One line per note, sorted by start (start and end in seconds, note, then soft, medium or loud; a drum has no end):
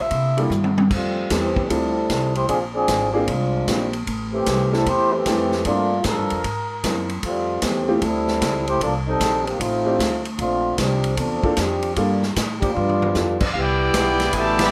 0.00 0.87 D3 medium
0.00 0.89 A#3 medium
0.00 0.39 E5 loud
0.11 0.49 C3 medium
0.11 0.90 A3 medium
0.11 0.90 E4 medium
0.11 kick soft
0.11 ride medium
0.37 0.49 G3 medium
0.37 0.49 A#3 medium
0.37 0.49 D4 medium
0.37 0.49 E4 medium
0.37 0.49 A4 medium
0.37 ride soft
0.50 0.89 G2 medium
0.50 hi-hat pedal medium
0.50 mid tom soft
0.64 high tom medium
0.78 high tom medium
0.91 1.29 F2 medium
0.91 1.29 G3 medium
0.91 1.29 A3 medium
0.91 1.29 C4 medium
0.91 1.29 F4 medium
0.91 kick medium
0.91 crash medium
1.30 1.69 E2 medium
1.30 1.71 E3 medium
1.30 1.68 G3 medium
1.30 1.71 A3 medium
1.30 1.69 C4 medium
1.30 1.69 E4 medium
1.30 1.69 G4 medium
1.30 1.71 G4 medium
1.30 1.69 A4 medium
1.30 kick soft
1.30 snare medium
1.30 hi-hat pedal medium
1.30 ride medium
1.56 kick medium
1.69 2.08 D2 medium
1.69 1.93 G3 medium
1.69 2.35 G3 medium
1.69 1.93 C4 medium
1.69 2.36 C4 medium
1.69 2.35 E4 medium
1.69 1.93 E4 medium
1.69 1.93 F4 medium
1.69 2.35 A4 loud
1.69 1.93 A4 medium
1.69 kick soft
1.69 ride medium
2.10 2.48 C2 medium
2.10 kick soft
2.10 snare medium
2.10 hi-hat pedal medium
2.10 ride medium
2.35 2.49 A3 medium
2.35 2.48 E4 medium
2.35 2.49 G4 medium
2.35 2.49 C5 loud
2.35 ride soft
2.48 2.87 A#1 medium
2.48 2.60 F3 medium
2.48 2.60 C4 medium
2.48 2.60 D4 medium
2.48 2.60 G#4 loud
2.48 kick soft
2.48 ride medium
2.74 3.12 F3 medium
2.74 3.12 C4 medium
2.74 3.12 D4 medium
2.74 3.11 G#4 loud
2.88 3.27 G#1 medium
2.88 kick soft
2.88 snare medium
2.88 hi-hat pedal medium
2.88 ride medium
3.13 3.21 E3 medium
3.13 3.20 G#3 medium
3.13 3.26 A#3 medium
3.13 3.20 C4 medium
3.13 3.27 C4 medium
3.13 3.27 D4 medium
3.13 3.27 F4 medium
3.13 3.20 G4 medium
3.13 3.27 G#4 medium
3.28 3.67 C2 medium
3.28 3.90 G#3 medium
3.28 3.90 C4 medium
3.28 3.90 D4 medium
3.28 3.90 F4 medium
3.28 kick soft
3.28 ride medium
3.68 4.06 A#1 medium
3.68 3.91 A#3 soft
3.68 3.91 C4 soft
3.68 3.91 D4 soft
3.68 3.91 F4 soft
3.68 3.92 G4 medium
3.68 kick soft
3.68 snare medium
3.68 hi-hat pedal medium
3.68 ride medium
3.93 ride soft
4.07 4.45 A1 medium
4.07 kick soft
4.07 ride medium
4.33 4.70 E3 medium
4.33 4.70 A3 medium
4.33 4.70 C4 medium
4.33 4.70 G4 loud
4.46 4.85 C2 medium
4.46 kick soft
4.46 snare medium
4.46 hi-hat pedal medium
4.46 ride medium
4.72 4.87 G3 medium
4.72 4.85 A3 medium
4.72 4.85 C4 medium
4.72 4.87 C4 medium
4.72 4.85 E4 medium
4.72 4.86 E4 medium
4.72 4.85 G4 medium
4.72 4.85 A4 medium
4.72 4.87 A4 loud
4.72 snare soft
4.86 5.25 E2 medium
4.86 5.12 A3 medium
4.86 5.13 E4 loud
4.86 5.12 G4 medium
4.86 5.13 C5 loud
4.86 kick soft
4.86 ride medium
5.13 5.66 E3 medium
5.13 5.65 A3 medium
5.13 5.66 C4 medium
5.13 5.66 G4 loud
5.25 5.64 F2 medium
5.25 5.49 A3 medium
5.25 5.50 C4 medium
5.25 5.50 E4 medium
5.25 5.50 G4 medium
5.25 5.50 A4 medium
5.25 kick soft
5.25 snare medium
5.25 hi-hat pedal medium
5.25 ride medium
5.52 snare soft
5.65 6.04 G2 medium
5.65 6.03 A3 medium
5.65 5.89 A#3 medium
5.65 6.03 A#3 medium
5.65 5.89 C4 medium
5.65 5.89 D4 medium
5.65 6.03 D4 medium
5.65 6.03 F4 loud
5.65 5.89 F4 medium
5.65 5.90 A4 medium
5.65 kick soft
5.65 ride medium
6.04 6.18 A2 medium
6.04 6.45 F3 medium
6.04 6.45 D4 medium
6.04 6.45 A4 medium
6.04 7.10 A#4 loud
6.04 kick soft
6.04 snare medium
6.04 hi-hat pedal medium
6.04 ride medium
6.18 6.31 G2 medium
6.30 6.43 F2 medium
6.30 ride medium
6.44 6.82 G#2 medium
6.44 kick soft
6.44 ride medium
6.84 7.22 F#2 medium
6.84 7.07 A#3 soft
6.84 7.07 C4 soft
6.84 7.07 D#4 soft
6.84 7.07 E4 soft
6.84 7.08 A#4 medium
6.84 kick soft
6.84 snare medium
6.84 hi-hat pedal medium
6.84 ride medium
7.09 ride soft
7.23 7.62 F2 medium
7.23 7.61 G3 medium
7.23 7.61 A3 medium
7.23 7.61 C4 medium
7.23 7.61 F4 medium
7.23 kick soft
7.23 ride medium
7.62 8.01 E2 medium
7.62 8.03 E3 medium
7.62 8.03 A3 medium
7.62 8.02 C4 medium
7.62 8.02 G4 medium
7.62 kick soft
7.62 snare medium
7.62 hi-hat pedal medium
7.62 ride medium
7.88 8.01 A3 medium
7.88 8.01 C4 medium
7.88 8.01 E4 medium
7.88 8.01 F4 medium
7.88 8.01 G4 medium
8.02 8.40 D2 medium
8.02 8.68 G3 medium
8.02 8.68 C4 medium
8.02 8.68 E4 medium
8.02 8.68 A4 loud
8.02 kick soft
8.02 ride medium
8.28 snare soft
8.41 8.80 C#2 loud
8.41 kick soft
8.41 snare medium
8.41 hi-hat pedal medium
8.41 ride medium
8.68 8.81 A3 medium
8.68 8.81 E4 medium
8.68 8.81 G4 medium
8.68 8.81 C5 medium
8.68 ride medium
8.81 9.19 C2 medium
8.81 8.94 F3 medium
8.81 8.95 A#3 medium
8.81 8.95 D4 medium
8.81 8.94 A4 medium
8.81 kick soft
8.81 ride medium
9.08 9.44 G3 medium
9.08 9.44 C4 medium
9.08 9.44 D#4 medium
9.08 9.44 A4 loud
9.20 9.59 A#1 medium
9.20 kick soft
9.20 snare medium
9.20 hi-hat pedal medium
9.20 ride medium
9.46 9.60 D#3 medium
9.46 9.60 A#3 medium
9.46 9.60 C4 medium
9.46 9.60 G4 medium
9.46 ride soft
9.60 9.98 A1 medium
9.60 10.26 A3 medium
9.60 10.26 C4 medium
9.60 10.26 D#4 medium
9.60 10.26 F4 medium
9.60 kick soft
9.60 ride medium
9.85 9.98 A3 medium
9.85 9.98 C4 medium
9.85 9.98 D4 medium
9.85 9.98 D#4 medium
9.85 9.99 G4 medium
9.99 10.38 D2 medium
9.99 kick soft
9.99 snare medium
9.99 hi-hat pedal medium
9.99 ride medium
10.25 ride medium
10.38 10.77 A#1 medium
10.38 10.76 A3 medium
10.38 10.77 C4 medium
10.38 10.77 D4 medium
10.38 10.76 F4 medium
10.38 kick soft
10.38 ride medium
10.78 11.17 C2 medium
10.78 11.17 F3 medium
10.78 11.17 C4 medium
10.78 11.17 D4 medium
10.78 11.19 G4 medium
10.78 kick soft
10.78 snare medium
10.78 hi-hat pedal medium
10.78 ride medium
11.04 ride medium
11.17 11.42 E2 medium
11.17 11.57 F3 medium
11.17 11.57 C4 medium
11.17 11.57 D4 medium
11.17 11.57 A4 medium
11.17 kick soft
11.17 ride medium
11.43 11.56 A#3 medium
11.43 11.56 C4 medium
11.43 11.56 D4 medium
11.43 11.56 F4 medium
11.43 11.56 A4 medium
11.43 kick medium
11.57 11.96 F2 medium
11.57 11.97 F3 medium
11.57 11.97 C4 medium
11.57 11.94 D4 medium
11.57 11.97 G4 medium
11.57 kick soft
11.57 snare medium
11.57 hi-hat pedal medium
11.57 ride medium
11.83 ride soft
11.95 12.35 G2 medium
11.95 12.21 G3 medium
11.95 12.20 G3 medium
11.95 12.21 A#3 medium
11.95 12.20 A#3 medium
11.95 12.20 D4 medium
11.95 12.21 D4 medium
11.95 12.21 F4 medium
11.95 12.20 F4 medium
11.95 12.21 A4 medium
11.95 kick soft
11.95 ride medium
12.23 snare soft
12.36 12.75 A2 medium
12.36 kick soft
12.36 snare medium
12.36 hi-hat pedal medium
12.36 ride medium
12.60 12.74 F3 medium
12.60 12.74 A#3 medium
12.60 12.73 D4 medium
12.60 12.74 G4 loud
12.60 kick medium
12.60 ride medium
12.74 13.15 G2 medium
12.74 13.37 G3 medium
12.74 13.36 B3 medium
12.74 13.36 D4 medium
12.74 13.37 F4 loud
12.74 floor tom medium
12.89 floor tom medium
13.02 floor tom medium
13.15 13.54 F2 medium
13.15 13.39 G3 medium
13.15 13.39 B3 soft
13.15 13.39 D4 soft
13.15 13.39 F4 soft
13.15 13.39 A4 medium
13.15 snare medium
13.15 hi-hat pedal medium
13.40 13.46 F3 medium
13.40 13.45 B3 medium
13.40 13.44 D4 medium
13.40 13.47 F4 medium
13.40 13.47 G4 medium
13.40 13.47 D5 medium
13.40 kick medium
13.40 crash medium
13.44 13.48 B3 medium
13.52 13.93 C2 medium
13.52 14.71 D3 medium
13.52 14.71 G3 medium
13.52 14.71 B3 medium
13.52 14.31 B3 medium
13.52 14.30 E4 medium
13.52 14.71 E4 medium
13.52 14.31 G4 medium
13.52 13.56 F5 medium
13.52 kick soft
13.59 14.32 E4 medium
13.59 14.33 B4 medium
13.59 14.33 D5 medium
13.59 14.32 G5 loud
13.94 14.33 B1 medium
13.94 kick soft
13.94 snare medium
13.94 hi-hat pedal medium
13.94 ride medium
14.20 snare medium
14.20 ride medium
14.32 14.71 A1 medium
14.32 14.35 G#5 medium
14.32 kick soft
14.32 ride medium
14.36 14.61 B2 medium
14.36 14.60 E3 medium
14.36 14.61 A3 medium
14.36 14.61 G4 loud
14.36 14.61 D5 loud
14.36 14.61 E5 medium
14.36 14.61 A5 loud
14.59 14.71 E3 loud
14.59 14.71 G3 loud
14.59 14.71 B3 loud
14.59 snare medium
14.59 ride medium
14.63 14.71 G4 medium
14.63 14.71 D5 loud
14.63 14.71 E5 loud
14.63 14.71 B5 loud